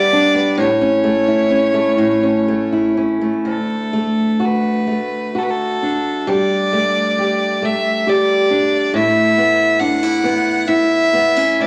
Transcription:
0.00 0.68 G3 medium
0.00 0.34 B3 medium
0.00 0.12 D4 medium
0.00 0.68 G4 medium
0.00 0.58 D5 loud
0.13 0.68 D4 medium
0.35 0.67 B3 medium
0.58 1.97 A2 medium
0.58 2.94 C#5 medium
0.81 1.49 C#4 medium
1.04 1.73 A3 medium
1.28 2.72 E4 medium
1.51 2.22 C#4 medium
1.74 2.48 A3 soft
1.98 3.55 A2 medium
2.23 2.96 C#4 soft
2.48 3.21 A3 soft
2.72 4.39 E4 soft
2.97 3.55 C#4 medium
3.21 3.93 A3 soft
3.45 6.27 D2 medium
3.45 4.47 A4 medium
3.93 4.87 A3 soft
4.40 5.34 F#4 medium
4.45 5.39 B4 medium
4.87 6.72 A3 soft
5.35 6.36 F#4 medium
5.35 5.44 A4 medium
5.43 5.52 B4 medium
5.50 6.31 A4 medium
5.83 8.50 D4 soft
6.27 8.93 G3 medium
6.27 7.67 D5 medium
6.73 7.62 A3 soft
7.18 8.06 G4 medium
7.62 9.37 A3 soft
7.62 8.11 E5 medium
8.07 9.02 G4 medium
8.07 8.94 D5 medium
8.50 9.02 D4 medium
8.94 11.60 A2 medium
8.94 9.81 E5 loud
9.38 10.23 B3 medium
9.80 10.03 D4 medium
9.80 10.70 F#5 loud
10.03 10.67 E4 medium
10.24 11.12 B3 medium
10.68 11.67 E4 medium
10.68 11.63 E5 loud
11.13 11.37 B3 medium
11.37 11.67 C#4 soft
11.60 11.67 D2 medium
11.60 11.67 D5 medium

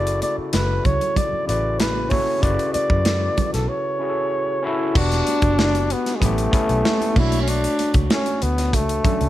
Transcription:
0.00 0.21 F#1 medium
0.00 0.58 C#3 medium
0.00 0.59 E4 medium
0.00 0.60 F#4 medium
0.00 0.60 A4 loud
0.00 0.20 D5 loud
0.07 closed hi-hat medium
0.22 0.37 D5 medium
0.22 closed hi-hat medium
0.22 muted conga soft
0.38 muted fingered electric bass stroke soft
0.53 0.78 F#1 medium
0.53 0.87 B4 loud
0.53 snare loud
0.53 closed hi-hat loud
0.53 high conga medium
0.85 0.98 C#2 medium
0.85 1.18 C#5 loud
0.85 kick medium
0.85 closed hi-hat medium
0.85 low conga medium
1.01 closed hi-hat medium
1.16 1.47 D5 loud
1.16 kick medium
1.16 closed hi-hat medium
1.16 muted conga soft
1.16 low conga medium
1.33 muted fingered electric bass stroke soft
1.46 2.23 A1 medium
1.46 1.97 C#3 medium
1.46 1.98 E4 medium
1.46 1.99 F#4 medium
1.46 1.99 B4 medium
1.46 1.81 D5 loud
1.46 closed hi-hat medium
1.79 2.11 B4 medium
1.79 snare loud
1.79 closed hi-hat medium
1.79 high conga medium
2.09 2.35 C#4 medium
2.09 2.36 E4 medium
2.09 2.37 F#4 medium
2.09 2.37 A4 medium
2.09 2.44 C#5 medium
2.09 kick medium
2.09 open hi-hat medium
2.09 high conga medium
2.41 2.55 F#1 loud
2.41 3.42 C#3 medium
2.41 3.43 E4 medium
2.41 3.43 F#4 medium
2.41 2.73 D5 loud
2.41 kick loud
2.41 closed hi-hat medium
2.45 3.44 B4 medium
2.59 closed hi-hat medium
2.73 3.49 D5 loud
2.73 muted fingered electric bass stroke soft
2.73 closed hi-hat medium
2.73 muted conga soft
2.90 3.28 F#2 medium
2.90 kick loud
3.05 snare loud
3.05 closed hi-hat medium
3.05 high conga medium
3.38 muted fingered electric bass stroke soft
3.38 kick medium
3.38 closed hi-hat medium
3.38 low conga medium
3.53 3.66 B1 medium
3.53 3.70 A4 medium
3.53 snare soft
3.53 closed hi-hat medium
3.68 4.63 C#5 medium
3.99 4.50 C#4 medium
3.99 4.51 E4 medium
3.99 4.51 F#4 medium
4.03 4.08 G#4 medium
4.10 4.55 A4 medium
4.63 4.88 C#4 medium
4.63 4.89 E4 medium
4.63 4.99 E4 loud
4.63 4.90 F#4 medium
4.63 4.90 A4 loud
4.94 5.20 E1 loud
4.94 5.95 B3 medium
4.94 5.95 D4 medium
4.94 5.94 D4 loud
4.94 5.96 F#4 medium
4.94 kick loud
4.94 crash loud
4.98 5.97 G4 medium
5.12 snare soft
5.12 closed hi-hat medium
5.27 closed hi-hat medium
5.27 muted conga soft
5.42 5.92 F#1 medium
5.42 kick loud
5.42 closed hi-hat medium
5.59 snare loud
5.59 high conga medium
5.75 closed hi-hat medium
5.90 6.17 B3 loud
5.90 closed hi-hat medium
5.90 muted conga soft
6.06 snare soft
6.06 closed hi-hat medium
6.15 6.25 G#3 medium
6.20 6.47 A1 loud
6.20 7.20 A3 loud
6.20 6.46 B3 medium
6.20 6.47 C#4 medium
6.20 6.47 E4 medium
6.20 6.48 G4 medium
6.20 kick medium
6.20 closed hi-hat medium
6.20 muted conga medium
6.20 low conga medium
6.38 closed hi-hat medium
6.51 7.15 B3 medium
6.51 7.16 C#4 medium
6.51 7.16 E4 medium
6.51 7.17 A4 medium
6.51 kick loud
6.51 closed hi-hat medium
6.69 6.82 B1 loud
6.69 closed hi-hat soft
6.85 snare loud
6.85 high conga medium
7.01 closed hi-hat medium
7.01 high conga medium
7.14 7.66 B1 medium
7.14 8.16 A3 medium
7.14 8.17 D4 medium
7.14 7.41 E4 loud
7.14 8.17 C#5 medium
7.14 kick loud
7.14 crash medium
7.14 high conga medium
7.19 8.18 F#4 medium
7.32 closed hi-hat medium
7.42 7.50 C#4 medium
7.48 7.94 D4 loud
7.48 closed hi-hat medium
7.64 closed hi-hat medium
7.79 closed hi-hat medium
7.79 muted conga soft
7.94 8.07 C#2 loud
7.94 kick loud
7.94 closed hi-hat medium
8.10 8.44 C#4 loud
8.10 snare loud
8.10 high conga medium
8.26 closed hi-hat medium
8.42 8.74 D2 medium
8.42 8.76 B3 loud
8.42 closed hi-hat medium
8.58 snare soft
8.58 closed hi-hat medium
8.73 8.98 C#2 loud
8.73 9.29 A3 loud
8.73 kick medium
8.73 closed hi-hat loud
8.73 muted conga medium
8.89 closed hi-hat medium
9.03 9.29 A3 medium
9.03 9.29 C#4 medium
9.03 9.29 D4 medium
9.03 9.29 A4 medium
9.03 kick loud
9.03 closed hi-hat medium
9.03 low conga medium
9.21 9.29 C#2 medium
9.21 closed hi-hat soft

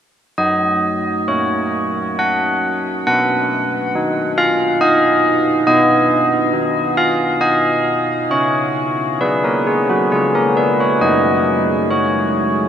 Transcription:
0.38 3.02 F#3 soft
0.38 1.24 D#5 medium
1.28 3.07 A#3 soft
1.28 2.15 C#5 medium
2.19 3.03 F#5 medium
3.07 5.63 B3 medium
3.07 4.34 F#5 medium
3.95 5.68 D#4 soft
4.38 4.79 F5 medium
4.81 5.64 D#5 medium
5.67 8.26 B3 medium
5.67 6.93 D#5 medium
6.54 8.30 D#4 soft
6.97 7.39 F5 medium
7.41 8.27 D#5 medium
8.31 10.07 C#4 soft
8.31 9.17 C#5 medium
9.21 9.88 F#4 soft
9.21 9.65 G#4 soft
9.21 9.43 B4 medium
9.44 9.66 A#4 medium
9.67 9.89 G#4 medium
9.90 10.12 F#4 medium
10.12 11.00 C#4 soft
10.12 10.98 F4 soft
10.12 10.34 G#4 medium
10.35 10.57 A#4 medium
10.57 10.79 B4 medium
10.80 11.02 C#5 medium
11.01 12.69 F#3 medium
11.01 11.87 D#5 medium
11.91 12.69 C#4 soft
11.91 12.69 C#5 medium

